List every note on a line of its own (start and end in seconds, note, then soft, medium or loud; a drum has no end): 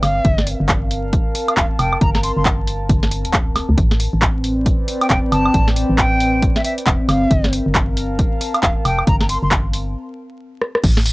0.00 0.20 G1 medium
0.00 3.77 C4 medium
0.00 1.54 D5 medium
0.00 0.47 F5 medium
0.00 1.44 G5 medium
0.00 snare soft
0.00 open hi-hat medium
0.00 high woodblock medium
0.09 3.78 A#4 medium
0.09 3.78 F5 medium
0.25 0.55 G1 loud
0.25 kick loud
0.25 closed hi-hat medium
0.38 snare medium
0.47 open hi-hat loud
0.53 5.10 A5 medium
0.60 1.21 G1 medium
0.69 kick loud
0.69 clap loud
0.69 closed hi-hat medium
0.91 open hi-hat medium
1.13 kick loud
1.13 closed hi-hat medium
1.35 open hi-hat loud
1.48 1.54 F5 medium
1.48 closed hi-hat medium
1.48 high woodblock medium
1.57 1.67 D1 medium
1.57 1.66 F5 medium
1.57 kick loud
1.57 clap loud
1.57 closed hi-hat medium
1.79 1.97 F1 medium
1.79 2.01 G5 medium
1.79 open hi-hat medium
1.79 high woodblock medium
1.93 high woodblock medium
2.01 2.31 G1 loud
2.01 2.10 A#5 medium
2.01 kick loud
2.01 closed hi-hat medium
2.15 2.20 A#5 medium
2.15 snare medium
2.23 2.32 C6 medium
2.23 open hi-hat medium
2.37 2.89 G1 medium
2.37 2.42 C6 medium
2.45 kick loud
2.45 clap loud
2.45 closed hi-hat medium
2.67 open hi-hat medium
2.89 3.26 G1 loud
2.89 kick loud
2.89 closed hi-hat medium
3.03 snare medium
3.11 open hi-hat loud
3.25 3.64 D1 medium
3.25 closed hi-hat medium
3.34 kick loud
3.34 clap loud
3.34 closed hi-hat medium
3.56 snare soft
3.56 open hi-hat medium
3.56 high woodblock medium
3.69 3.76 D2 medium
3.78 4.08 A1 medium
3.78 9.95 C4 medium
3.78 kick loud
3.78 closed hi-hat medium
3.91 7.09 B4 medium
3.91 snare medium
4.00 open hi-hat loud
4.13 4.74 A1 medium
4.13 7.90 D5 medium
4.22 kick loud
4.22 clap loud
4.22 closed hi-hat medium
4.28 8.54 G5 medium
4.44 open hi-hat medium
4.66 kick loud
4.66 closed hi-hat medium
4.88 open hi-hat medium
5.01 5.07 G5 medium
5.01 closed hi-hat medium
5.01 high woodblock medium
5.10 5.20 E1 medium
5.10 5.19 G5 medium
5.10 kick loud
5.10 clap loud
5.10 closed hi-hat medium
5.32 5.50 G1 medium
5.32 5.68 A5 medium
5.32 open hi-hat medium
5.32 high woodblock medium
5.46 high woodblock medium
5.54 5.84 A1 medium
5.54 kick loud
5.54 closed hi-hat medium
5.68 snare medium
5.76 open hi-hat loud
5.90 6.50 A1 medium
5.98 6.42 G5 medium
5.98 kick loud
5.98 clap loud
5.98 closed hi-hat medium
6.20 open hi-hat medium
6.42 kick loud
6.42 closed hi-hat medium
6.56 6.61 E5 medium
6.56 snare medium
6.65 6.73 E5 medium
6.65 open hi-hat loud
6.78 closed hi-hat medium
6.87 6.97 E1 medium
6.87 kick loud
6.87 clap loud
6.87 closed hi-hat medium
7.09 7.26 G1 medium
7.09 7.53 F5 medium
7.09 snare soft
7.09 open hi-hat medium
7.09 high woodblock medium
7.20 9.95 A#4 medium
7.31 7.61 G1 loud
7.31 kick loud
7.31 closed hi-hat medium
7.44 9.95 F5 medium
7.44 snare medium
7.49 9.95 A5 medium
7.49 open hi-hat loud
7.66 8.27 G1 medium
7.75 kick loud
7.75 clap loud
7.75 closed hi-hat medium
7.97 open hi-hat medium
8.19 kick loud
8.19 closed hi-hat medium
8.41 open hi-hat loud
8.54 8.60 F5 medium
8.54 closed hi-hat medium
8.54 high woodblock medium
8.63 8.73 D1 medium
8.63 8.72 F5 medium
8.63 kick loud
8.63 clap loud
8.63 closed hi-hat medium
8.85 9.03 F1 medium
8.85 9.07 G5 medium
8.85 open hi-hat loud
8.85 high woodblock medium
8.99 high woodblock medium
9.07 9.37 G1 loud
9.07 9.16 A#5 medium
9.07 kick loud
9.07 closed hi-hat medium
9.21 9.26 A#5 medium
9.21 snare medium
9.29 9.38 C6 medium
9.29 open hi-hat loud
9.43 9.95 G1 medium
9.43 9.48 C6 medium
9.51 kick loud
9.51 clap loud
9.51 closed hi-hat medium
9.73 open hi-hat loud
10.62 cross-stick medium
10.75 cross-stick medium
10.84 11.13 A1 loud
10.84 kick loud
10.84 closed hi-hat medium
10.84 crash loud
10.84 tambourine soft
10.97 snare medium
10.97 tambourine soft
11.06 open hi-hat loud
11.06 tambourine medium